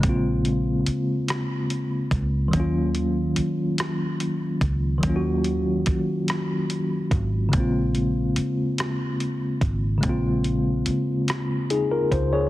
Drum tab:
HH |xxxxxx|xxxxxx|xxxxxx|xxxxxx|
SD |---r--|---r--|---r--|---r--|
BD |o----o|o----o|o-o--o|o----o|

HH |xxxxxx|
SD |---r--|
BD |o----o|